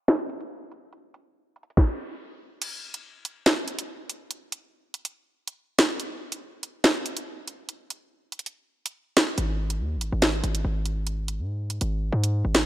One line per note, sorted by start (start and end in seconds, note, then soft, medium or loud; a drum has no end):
0.08 snare loud
0.08 closed hi-hat medium
0.30 closed hi-hat medium
0.41 closed hi-hat medium
0.71 closed hi-hat medium
0.93 closed hi-hat medium
1.14 closed hi-hat medium
1.56 closed hi-hat medium
1.63 closed hi-hat medium
1.70 closed hi-hat medium
1.77 kick loud
1.77 snare medium
2.62 closed hi-hat medium
2.62 crash loud
2.94 closed hi-hat medium
3.25 closed hi-hat medium
3.46 snare loud
3.46 closed hi-hat medium
3.68 closed hi-hat medium
3.79 closed hi-hat medium
4.10 closed hi-hat medium
4.31 closed hi-hat medium
4.52 closed hi-hat medium
4.94 closed hi-hat medium
5.05 closed hi-hat medium
5.48 closed hi-hat medium
5.78 snare loud
5.78 closed hi-hat medium
6.00 closed hi-hat medium
6.32 closed hi-hat medium
6.63 closed hi-hat medium
6.84 snare loud
6.84 closed hi-hat medium
7.06 closed hi-hat medium
7.17 closed hi-hat medium
7.48 closed hi-hat medium
7.69 closed hi-hat medium
7.90 closed hi-hat medium
8.32 closed hi-hat medium
8.39 closed hi-hat medium
8.46 closed hi-hat medium
8.86 closed hi-hat medium
9.17 snare loud
9.17 closed hi-hat medium
9.38 9.82 G#1 loud
9.38 closed hi-hat medium
9.70 closed hi-hat medium
9.80 9.98 D#2 loud
9.96 10.12 G#1 loud
10.01 closed hi-hat medium
10.12 10.42 G#1 loud
10.22 snare loud
10.22 closed hi-hat medium
10.44 10.64 G#1 loud
10.44 closed hi-hat medium
10.55 closed hi-hat medium
10.65 11.41 G#1 loud
10.86 closed hi-hat medium
11.07 closed hi-hat medium
11.28 closed hi-hat medium
11.39 11.79 G#2 loud
11.70 closed hi-hat medium
11.81 12.11 G#1 loud
11.81 closed hi-hat medium
12.12 12.44 G#2 loud
12.24 closed hi-hat medium
12.45 12.66 G#1 loud
12.55 snare loud
12.55 closed hi-hat medium